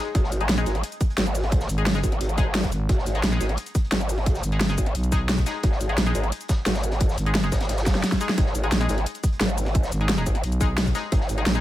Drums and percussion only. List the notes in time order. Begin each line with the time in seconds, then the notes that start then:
0.15 kick, closed hi-hat
0.24 snare
0.32 closed hi-hat, cabasa
0.41 closed hi-hat
0.49 snare, closed hi-hat
0.58 snare, cabasa
0.66 snare, closed hi-hat, cabasa
0.75 snare, closed hi-hat
0.83 closed hi-hat
0.92 closed hi-hat, cabasa
1.01 kick, closed hi-hat, cabasa
1.10 closed hi-hat
1.17 snare, closed hi-hat
1.26 snare, cabasa
1.35 closed hi-hat, open hi-hat, cabasa
1.44 snare
1.51 kick, closed hi-hat
1.60 snare, cabasa
1.69 closed hi-hat, cabasa
1.78 closed hi-hat
1.86 snare, closed hi-hat
1.95 snare, cabasa
2.03 kick, closed hi-hat, cabasa
2.12 snare, closed hi-hat
2.21 closed hi-hat
2.29 closed hi-hat, cabasa
2.38 kick, closed hi-hat, cabasa
2.55 snare, closed hi-hat
2.63 kick, cabasa
2.72 closed hi-hat, cabasa
2.89 kick, closed hi-hat
2.98 snare
3.06 closed hi-hat, cabasa
3.15 closed hi-hat
3.23 snare, closed hi-hat
3.32 snare, cabasa
3.41 snare, closed hi-hat, cabasa
3.49 snare, closed hi-hat
3.57 closed hi-hat
3.66 closed hi-hat, cabasa
3.75 kick, closed hi-hat, cabasa
3.85 closed hi-hat
3.92 snare, closed hi-hat
4.01 snare, cabasa
4.09 closed hi-hat, open hi-hat, cabasa
4.18 snare
4.26 kick, closed hi-hat
4.35 snare, cabasa
4.43 closed hi-hat, cabasa
4.52 closed hi-hat
4.60 snare, closed hi-hat
4.69 snare, cabasa
4.78 kick, closed hi-hat, cabasa
4.86 snare, closed hi-hat
4.95 closed hi-hat
5.03 closed hi-hat, cabasa
5.12 kick, closed hi-hat, cabasa
5.29 snare, closed hi-hat
5.38 kick, cabasa
5.46 snare, closed hi-hat, cabasa
5.63 kick, closed hi-hat
5.72 snare
5.81 closed hi-hat, cabasa
5.89 closed hi-hat
5.98 snare, closed hi-hat
6.06 snare, cabasa
6.15 closed hi-hat, cabasa
6.24 snare, closed hi-hat
6.32 closed hi-hat
6.41 closed hi-hat, cabasa
6.48 kick, snare, closed hi-hat, cabasa
6.66 snare, closed hi-hat
6.75 snare, closed hi-hat, cabasa
6.84 closed hi-hat, cabasa
6.91 snare, closed hi-hat
7.00 kick, closed hi-hat
7.09 snare, cabasa
7.18 closed hi-hat, cabasa
7.26 closed hi-hat
7.35 snare, closed hi-hat
7.43 snare, cabasa
7.52 kick, snare, closed hi-hat, cabasa
7.61 snare, closed hi-hat
7.69 snare, closed hi-hat
7.78 snare, closed hi-hat, cabasa
7.86 kick, snare, closed hi-hat, cabasa
7.95 snare, closed hi-hat
8.04 snare, closed hi-hat
8.12 kick, snare, cabasa
8.21 closed hi-hat, cabasa
8.29 snare
8.38 kick, closed hi-hat
8.46 snare
8.54 closed hi-hat, cabasa
8.64 closed hi-hat
8.72 snare, closed hi-hat
8.81 snare, cabasa
8.89 snare, closed hi-hat, cabasa
8.98 snare, closed hi-hat
9.06 closed hi-hat
9.14 closed hi-hat, cabasa
9.24 kick, closed hi-hat, cabasa
9.33 closed hi-hat
9.40 snare, closed hi-hat
9.49 snare, cabasa
9.58 closed hi-hat, open hi-hat, cabasa
9.66 snare
9.74 kick, closed hi-hat
9.83 snare, cabasa
9.92 closed hi-hat, cabasa
10.01 closed hi-hat
10.09 snare, closed hi-hat
10.17 snare, cabasa
10.26 kick, closed hi-hat, cabasa
10.35 snare, closed hi-hat
10.44 closed hi-hat
10.52 closed hi-hat, cabasa
10.61 kick, closed hi-hat, cabasa
10.78 snare, closed hi-hat
10.86 kick, cabasa
10.95 snare, closed hi-hat, cabasa
11.12 kick, closed hi-hat
11.21 snare
11.29 closed hi-hat, cabasa
11.38 closed hi-hat
11.46 snare, closed hi-hat
11.55 snare, cabasa